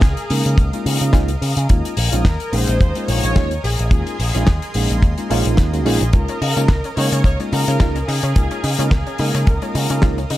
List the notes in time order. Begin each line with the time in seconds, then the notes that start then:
Already playing: G#4 A#4 D#5 F5 D#6
0.01 C#2, kick, snare, closed hi-hat
0.17 closed hi-hat
0.30 C#3 G#3 A#3 C#4 D#4 A#4, open hi-hat
0.46 C#3, closed hi-hat
0.58 C#2, kick, closed hi-hat
0.73 G#3 A#3 C#4 D#4 F4, closed hi-hat
0.86 C#3, open hi-hat
1.01 C#3, closed hi-hat
1.13 C#2 G#3 A#3 C#4 D#4 F4, kick, snare, closed hi-hat
1.28 closed hi-hat
1.41 C#3, open hi-hat
1.57 C#3, closed hi-hat
1.69 D#2 G#3 A#3 C#4 D#4 F4 D#5 G#5 D#6, kick, closed hi-hat
1.85 closed hi-hat
1.97 A#1, open hi-hat
2.12 A#1 G#3 A#3 C#4 D#4 F4, closed hi-hat
2.25 D#2 A#4, kick, snare, closed hi-hat
2.40 closed hi-hat
2.52 A#1 G#3 A#3 C#4 D#4 G#4 C5, open hi-hat
2.67 A#1, closed hi-hat
2.81 D#2, kick, closed hi-hat
2.95 G#3 A#3 C#4 D#4 F4, closed hi-hat
3.08 A#1 C#5, open hi-hat
3.23 A#1, closed hi-hat
3.36 D#2 G#3 A#3 C#4 D#4 F4, kick, snare, closed hi-hat
3.51 closed hi-hat
3.64 A#1 G#4, open hi-hat
3.79 A#1, closed hi-hat
3.91 D#2 G#3 A#3 C#4 D#4 F4 C6, kick, closed hi-hat
4.07 closed hi-hat
4.19 A#1, open hi-hat
4.34 A#1 G#3 A#3 C#4 D#4 F4, closed hi-hat
4.47 D#2, kick, snare, closed hi-hat
4.62 closed hi-hat
4.74 A#1 G#3 A#3 C#4 D#4 G#4, open hi-hat
4.90 A#1, closed hi-hat
5.02 D#2, kick, closed hi-hat
5.18 G#3 A#3 C#4 D#4 F4, closed hi-hat
5.30 A#1 G#3 A#3 C#4 D#4 F4, open hi-hat
5.45 A#1, closed hi-hat
5.57 D#2, kick, snare, closed hi-hat
5.73 G#3 A#3 C#4 D#4 F#4, closed hi-hat
5.86 A#1 G#3 A#3 C#4 D#4 F4 G#4, open hi-hat
6.01 A#1, closed hi-hat
6.13 C#2 G#3 A#3 C#4 D#4 F4 A#4 F5 D#6, kick, closed hi-hat
6.28 C#4, closed hi-hat
6.41 C#3 D#4, open hi-hat
6.56 C#3 G#3 A#3 C#4 D#4 F4, closed hi-hat
6.68 C#2 A#3, kick, snare, closed hi-hat
6.84 C#4, closed hi-hat
6.97 C#3 G#3 A#3 C#4 D#4 A#4 C#5, open hi-hat
7.12 C#3 C#4, closed hi-hat
7.24 C#2 A#3 C#5, kick, closed hi-hat
7.40 G#3 A#3 C#4 D#4 F4, closed hi-hat
7.52 C#3 D#4 A#4, open hi-hat
7.68 C#3 C#4, closed hi-hat
7.80 C#2 G#3 A#3 C#4 D#4 F4, kick, snare, closed hi-hat
7.96 C#4, closed hi-hat
8.08 C#3 D#4 G#4, open hi-hat
8.23 C#3 C#4, closed hi-hat
8.36 C#2 G#3 A#3 C#4 D#4 F4, kick, closed hi-hat
8.51 C#4, closed hi-hat
8.64 C#3 D#4, open hi-hat
8.78 C#3 G#3 A#3 C#4 D#4 F4, closed hi-hat
8.86 A#4
8.91 C#2 A#3 G#4, kick, snare, closed hi-hat
9.07 C#4, closed hi-hat
9.18 C#3 G#3 A#3 C#4 D#4 A#4, open hi-hat
9.34 C#3 C#4, closed hi-hat
9.47 C#2 A#3 A#4, kick, closed hi-hat
9.62 G#3 A#3 C#4 D#4 F4, closed hi-hat
9.75 C#3 D#4, open hi-hat
9.90 C#3 C#4, closed hi-hat
10.02 C#2 G#3 A#3 C#4 D#4 F4, kick, snare, closed hi-hat
10.18 C#4, closed hi-hat
10.30 C#3 D#4, open hi-hat